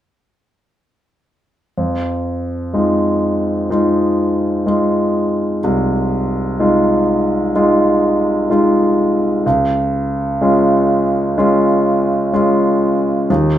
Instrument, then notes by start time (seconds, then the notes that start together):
grand piano
1.78 F2
2.74 G#3 D#4 F4
3.70 G#3 D#4 F4
4.66 G#3 D#4 F4
5.64 C2
6.59 G#3 D#4 F4
7.56 G#3 D#4 F4
8.50 G#3 D#4 F4
9.46 C#2
10.41 G#3 C#4 F4
11.37 G#3 C#4 F4
12.33 G#3 C#4 F4
13.30 D#2